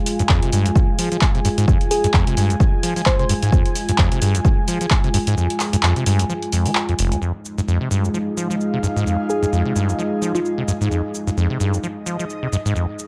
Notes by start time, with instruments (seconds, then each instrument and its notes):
Already playing: analog synth pad G#3 F4 G#5
0.06 open hi-hat, shaker
0.19 acid bass G2, closed hi-hat, shaker
0.29 acid bass F2, kick, clap, shaker
0.42 acid bass C3, closed hi-hat
0.53 acid bass G2, open hi-hat, shaker
0.66 acid bass F2, closed hi-hat, shaker
0.75 acid bass F3, kick, shaker
0.99 acid bass F3, open hi-hat, shaker
1.12 acid bass F3, closed hi-hat, shaker
1.21 kick, clap, shaker
1.35 acid bass C3, closed hi-hat
1.45 acid bass G2, open hi-hat, shaker
1.58 acid bass G#2, closed hi-hat, shaker
1.68 acid bass F2, kick, shaker
1.81 closed hi-hat
1.91 soft synth lead G#4, open hi-hat, shaker
2.04 acid bass G2, closed hi-hat, shaker
2.14 acid bass F2, kick, clap, shaker
2.27 acid bass C3, closed hi-hat
2.37 acid bass G2, open hi-hat, shaker
2.50 acid bass F2, closed hi-hat, shaker
2.60 acid bass F3, kick, shaker
2.83 acid bass F3, open hi-hat, shaker
2.96 acid bass F3, open hi-hat, shaker
3.06 soft synth lead C5, kick, clap, shaker
3.19 acid bass C3, soft synth lead C5, closed hi-hat
3.29 acid bass G2, open hi-hat, shaker
3.43 acid bass G#2, closed hi-hat, shaker
3.52 acid bass F2, kick, shaker
3.66 closed hi-hat
3.75 open hi-hat, shaker
3.89 acid bass G2, closed hi-hat, shaker
3.98 acid bass F2, kick, clap, shaker
4.12 acid bass C3, closed hi-hat
4.22 acid bass G2, open hi-hat, shaker
4.35 acid bass F2, closed hi-hat, shaker
4.45 acid bass F3, kick, shaker
4.68 acid bass F3, open hi-hat, shaker
4.81 acid bass F3, closed hi-hat, shaker
4.91 kick, clap, shaker
5.04 acid bass C3, closed hi-hat
5.14 acid bass G2, open hi-hat, shaker
5.27 acid bass G#2, closed hi-hat, shaker
5.37 acid bass F2, shaker
5.50 closed hi-hat
5.60 clap, open hi-hat, shaker
5.73 acid bass G2, closed hi-hat, shaker
5.83 acid bass F2, clap, shaker
5.96 acid bass C3, closed hi-hat
6.06 acid bass G2, open hi-hat, shaker
6.19 acid bass F2, closed hi-hat, shaker
6.29 acid bass F3, shaker
6.42 closed hi-hat
6.52 acid bass F2, open hi-hat, shaker
6.66 acid bass F3, open hi-hat, shaker
6.75 clap, shaker
6.89 acid bass F2, closed hi-hat
6.99 acid bass F1, open hi-hat, shaker
7.12 acid bass F2, closed hi-hat, shaker
7.22 acid bass F2, analog synth pad G#3 D#4 F4 D#5, shaker
7.45 shaker
7.52 analog synth pad G#4
7.58 acid bass G2, shaker
7.68 acid bass F2, shaker
7.81 acid bass C3
7.91 acid bass G2, shaker
8.04 acid bass F2, analog synth pad F5, shaker
8.14 acid bass F3, shaker
8.37 acid bass F3, shaker
8.50 acid bass F3, shaker
8.61 shaker
8.73 acid bass C3
8.83 acid bass G2, shaker
8.96 acid bass G#2, shaker
9.06 acid bass F2, shaker
9.30 soft synth lead G#4, shaker
9.42 acid bass G2, shaker
9.52 acid bass F2, shaker
9.65 acid bass C3
9.76 acid bass G2, shaker
9.89 acid bass F2, shaker
9.99 acid bass F3, shaker
10.22 acid bass F3, shaker
10.35 acid bass F3, soft synth lead F4, shaker
10.45 soft synth lead F4, shaker
10.58 acid bass C3
10.68 acid bass G2, shaker
10.81 acid bass G#2, shaker
10.91 acid bass F2, shaker
11.15 shaker
11.27 acid bass G2, shaker
11.37 acid bass F2, shaker
11.50 acid bass C3
11.60 acid bass G2, shaker
11.73 acid bass F2, analog synth pad D#5, shaker
11.83 acid bass F3, shaker
12.06 acid bass F3, shaker
12.19 acid bass F3, shaker
12.30 shaker
12.43 acid bass C3
12.52 acid bass G2, shaker
12.66 acid bass G#2, shaker
12.76 acid bass F2, shaker
12.99 shaker